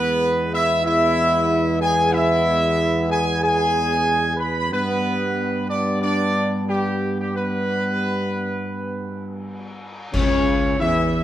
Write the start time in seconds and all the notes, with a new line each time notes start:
Already playing: E2 G#3 B3 B4
0.53 E4 E5
0.84 E4 E5
1.80 G#4 G#5
2.13 E4 E5
3.09 G#4 G#5
3.42 G#4 G#5
4.37 B4 B5
4.71 G2 G3 B3 B4
5.69 D4 D5
6.02 D4 D5
6.68 G3 G4
7.19 G3 G4
7.35 B3 B4
10.13 C#2 C#3 C#4 C#5, concert bass drum, crash
10.79 E2 E3 E4 E5